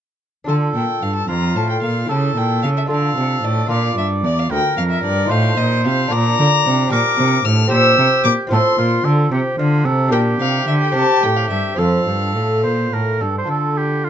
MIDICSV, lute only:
0, 0, Header, 1, 2, 480
1, 0, Start_track
1, 0, Key_signature, -1, "minor"
1, 0, Tempo, 536193
1, 431, Time_signature, 6, 3, 24, 8
1, 6200, Key_signature, -1, "major"
1, 9067, Tempo, 556586
1, 12489, End_track
2, 0, Start_track
2, 0, Title_t, "Lute"
2, 0, Program_c, 0, 24
2, 396, Note_on_c, 0, 62, 43
2, 413, Note_on_c, 0, 65, 43
2, 425, Note_on_c, 0, 69, 45
2, 436, Note_on_c, 0, 50, 46
2, 652, Note_off_c, 0, 50, 0
2, 686, Note_on_c, 0, 46, 49
2, 899, Note_off_c, 0, 46, 0
2, 918, Note_on_c, 0, 43, 45
2, 1135, Note_off_c, 0, 43, 0
2, 1154, Note_on_c, 0, 41, 51
2, 1372, Note_off_c, 0, 41, 0
2, 1398, Note_on_c, 0, 45, 53
2, 1615, Note_off_c, 0, 45, 0
2, 1640, Note_on_c, 0, 46, 50
2, 1827, Note_off_c, 0, 62, 0
2, 1836, Note_off_c, 0, 65, 0
2, 1838, Note_on_c, 0, 64, 44
2, 1842, Note_off_c, 0, 69, 0
2, 1855, Note_on_c, 0, 67, 46
2, 1857, Note_off_c, 0, 46, 0
2, 1866, Note_on_c, 0, 69, 44
2, 1885, Note_on_c, 0, 49, 49
2, 2100, Note_off_c, 0, 49, 0
2, 2113, Note_on_c, 0, 46, 51
2, 2333, Note_off_c, 0, 46, 0
2, 2354, Note_on_c, 0, 49, 50
2, 2556, Note_off_c, 0, 64, 0
2, 2560, Note_on_c, 0, 62, 45
2, 2566, Note_off_c, 0, 67, 0
2, 2567, Note_off_c, 0, 69, 0
2, 2571, Note_on_c, 0, 65, 49
2, 2572, Note_off_c, 0, 49, 0
2, 2583, Note_on_c, 0, 69, 45
2, 2598, Note_on_c, 0, 50, 51
2, 2814, Note_off_c, 0, 50, 0
2, 2843, Note_on_c, 0, 48, 58
2, 3056, Note_off_c, 0, 48, 0
2, 3081, Note_on_c, 0, 45, 53
2, 3269, Note_off_c, 0, 62, 0
2, 3279, Note_on_c, 0, 62, 48
2, 3280, Note_off_c, 0, 65, 0
2, 3286, Note_off_c, 0, 69, 0
2, 3292, Note_on_c, 0, 65, 53
2, 3294, Note_off_c, 0, 45, 0
2, 3304, Note_on_c, 0, 70, 50
2, 3318, Note_on_c, 0, 46, 55
2, 3532, Note_off_c, 0, 46, 0
2, 3561, Note_on_c, 0, 43, 52
2, 3774, Note_off_c, 0, 43, 0
2, 3799, Note_on_c, 0, 40, 52
2, 4012, Note_off_c, 0, 40, 0
2, 4028, Note_on_c, 0, 38, 58
2, 4244, Note_off_c, 0, 38, 0
2, 4269, Note_on_c, 0, 41, 62
2, 4483, Note_off_c, 0, 41, 0
2, 4505, Note_on_c, 0, 43, 57
2, 4692, Note_off_c, 0, 62, 0
2, 4698, Note_off_c, 0, 65, 0
2, 4698, Note_on_c, 0, 63, 56
2, 4704, Note_off_c, 0, 70, 0
2, 4710, Note_on_c, 0, 65, 53
2, 4721, Note_off_c, 0, 43, 0
2, 4725, Note_on_c, 0, 72, 54
2, 4740, Note_on_c, 0, 45, 60
2, 4962, Note_off_c, 0, 45, 0
2, 4988, Note_on_c, 0, 46, 60
2, 5212, Note_off_c, 0, 46, 0
2, 5232, Note_on_c, 0, 48, 61
2, 5437, Note_off_c, 0, 63, 0
2, 5440, Note_on_c, 0, 62, 59
2, 5443, Note_off_c, 0, 65, 0
2, 5451, Note_off_c, 0, 72, 0
2, 5454, Note_on_c, 0, 65, 55
2, 5456, Note_off_c, 0, 48, 0
2, 5468, Note_on_c, 0, 70, 60
2, 5482, Note_on_c, 0, 46, 64
2, 5699, Note_off_c, 0, 46, 0
2, 5714, Note_on_c, 0, 50, 69
2, 5933, Note_off_c, 0, 50, 0
2, 5961, Note_on_c, 0, 48, 65
2, 6148, Note_off_c, 0, 62, 0
2, 6159, Note_on_c, 0, 62, 58
2, 6163, Note_off_c, 0, 65, 0
2, 6169, Note_on_c, 0, 67, 57
2, 6170, Note_off_c, 0, 70, 0
2, 6175, Note_off_c, 0, 48, 0
2, 6189, Note_on_c, 0, 70, 58
2, 6199, Note_on_c, 0, 46, 68
2, 6412, Note_off_c, 0, 46, 0
2, 6435, Note_on_c, 0, 48, 66
2, 6649, Note_off_c, 0, 48, 0
2, 6668, Note_on_c, 0, 45, 61
2, 6867, Note_off_c, 0, 62, 0
2, 6869, Note_off_c, 0, 67, 0
2, 6870, Note_on_c, 0, 60, 61
2, 6880, Note_on_c, 0, 67, 59
2, 6886, Note_off_c, 0, 45, 0
2, 6886, Note_off_c, 0, 70, 0
2, 6898, Note_on_c, 0, 72, 61
2, 6914, Note_on_c, 0, 46, 69
2, 7128, Note_off_c, 0, 46, 0
2, 7152, Note_on_c, 0, 48, 75
2, 7367, Note_off_c, 0, 48, 0
2, 7384, Note_on_c, 0, 46, 60
2, 7571, Note_off_c, 0, 60, 0
2, 7582, Note_on_c, 0, 60, 58
2, 7590, Note_off_c, 0, 67, 0
2, 7596, Note_on_c, 0, 65, 57
2, 7600, Note_off_c, 0, 72, 0
2, 7601, Note_off_c, 0, 46, 0
2, 7613, Note_on_c, 0, 72, 61
2, 7623, Note_on_c, 0, 45, 66
2, 7840, Note_off_c, 0, 45, 0
2, 7860, Note_on_c, 0, 46, 66
2, 8078, Note_off_c, 0, 46, 0
2, 8100, Note_on_c, 0, 50, 63
2, 8317, Note_off_c, 0, 50, 0
2, 8338, Note_on_c, 0, 48, 63
2, 8555, Note_off_c, 0, 48, 0
2, 8588, Note_on_c, 0, 50, 66
2, 8802, Note_off_c, 0, 50, 0
2, 8821, Note_on_c, 0, 48, 59
2, 9006, Note_off_c, 0, 60, 0
2, 9014, Note_off_c, 0, 65, 0
2, 9022, Note_off_c, 0, 72, 0
2, 9026, Note_on_c, 0, 62, 56
2, 9039, Note_on_c, 0, 67, 54
2, 9040, Note_off_c, 0, 48, 0
2, 9052, Note_on_c, 0, 70, 57
2, 9062, Note_on_c, 0, 46, 67
2, 9275, Note_off_c, 0, 46, 0
2, 9306, Note_on_c, 0, 48, 62
2, 9517, Note_off_c, 0, 48, 0
2, 9546, Note_on_c, 0, 50, 52
2, 9734, Note_off_c, 0, 62, 0
2, 9740, Note_off_c, 0, 67, 0
2, 9747, Note_off_c, 0, 70, 0
2, 9747, Note_on_c, 0, 60, 56
2, 9756, Note_off_c, 0, 50, 0
2, 9761, Note_on_c, 0, 67, 56
2, 9770, Note_on_c, 0, 70, 52
2, 9787, Note_on_c, 0, 48, 54
2, 9996, Note_off_c, 0, 48, 0
2, 10022, Note_on_c, 0, 45, 58
2, 10234, Note_off_c, 0, 45, 0
2, 10257, Note_on_c, 0, 43, 55
2, 10453, Note_off_c, 0, 60, 0
2, 10463, Note_on_c, 0, 60, 46
2, 10466, Note_off_c, 0, 67, 0
2, 10471, Note_off_c, 0, 70, 0
2, 10473, Note_off_c, 0, 43, 0
2, 10480, Note_on_c, 0, 65, 46
2, 10493, Note_on_c, 0, 69, 45
2, 10504, Note_on_c, 0, 41, 52
2, 10715, Note_off_c, 0, 60, 0
2, 10720, Note_off_c, 0, 41, 0
2, 10744, Note_on_c, 0, 43, 47
2, 10963, Note_off_c, 0, 43, 0
2, 10988, Note_on_c, 0, 45, 45
2, 11208, Note_off_c, 0, 45, 0
2, 11237, Note_on_c, 0, 46, 48
2, 11456, Note_off_c, 0, 46, 0
2, 11484, Note_on_c, 0, 45, 52
2, 11702, Note_off_c, 0, 45, 0
2, 11723, Note_on_c, 0, 43, 47
2, 11920, Note_off_c, 0, 65, 0
2, 11922, Note_on_c, 0, 62, 35
2, 11927, Note_off_c, 0, 69, 0
2, 11934, Note_on_c, 0, 65, 36
2, 11938, Note_off_c, 0, 43, 0
2, 11950, Note_on_c, 0, 69, 37
2, 11959, Note_on_c, 0, 50, 39
2, 12489, Note_off_c, 0, 50, 0
2, 12489, Note_off_c, 0, 62, 0
2, 12489, Note_off_c, 0, 65, 0
2, 12489, Note_off_c, 0, 69, 0
2, 12489, End_track
0, 0, End_of_file